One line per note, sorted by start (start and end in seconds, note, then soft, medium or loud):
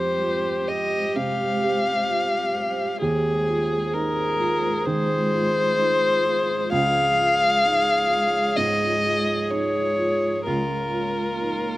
0.00 1.12 F2 medium
0.00 2.97 G#3 medium
0.00 0.50 G4 medium
0.00 2.97 G4 medium
0.00 0.69 C5 loud
0.00 2.97 C5 medium
0.22 0.69 F4 soft
0.68 1.44 G4 medium
0.68 1.17 D#5 loud
1.16 1.90 C3 medium
1.16 3.00 F5 medium
1.63 2.37 G4 medium
2.09 2.55 F4 soft
2.57 3.02 G4 medium
3.00 4.82 D#2 medium
3.00 6.68 G#3 medium
3.00 6.71 F4 medium
3.00 3.95 G#4 medium
3.00 6.68 G#4 medium
3.00 6.68 C5 medium
3.49 4.22 F4 medium
3.93 4.40 D#4 medium
3.93 4.87 A#4 loud
4.40 5.14 F4 medium
4.85 5.60 D#3 medium
4.85 6.72 C5 loud
5.32 6.06 F4 medium
5.78 6.25 D#4 medium
6.26 6.72 F4 medium
6.72 8.52 C#2 medium
6.72 10.41 G#3 medium
6.72 10.41 F4 medium
6.72 10.47 G#4 medium
6.72 10.43 C#5 medium
6.72 8.58 F5 loud
7.19 7.92 F4 medium
7.65 8.11 D#4 medium
8.10 8.85 F4 medium
8.56 9.32 G#2 medium
8.56 9.52 D#5 loud
9.05 9.79 F4 medium
9.50 9.98 D#4 soft
9.50 10.44 C#5 medium
9.98 10.45 F4 medium
10.44 11.78 C#2 medium
10.44 11.78 A#3 medium
10.44 11.78 F4 medium
10.44 11.78 A#4 medium
10.44 11.78 C#5 medium
10.94 11.70 F4 medium
11.41 11.78 D#4 soft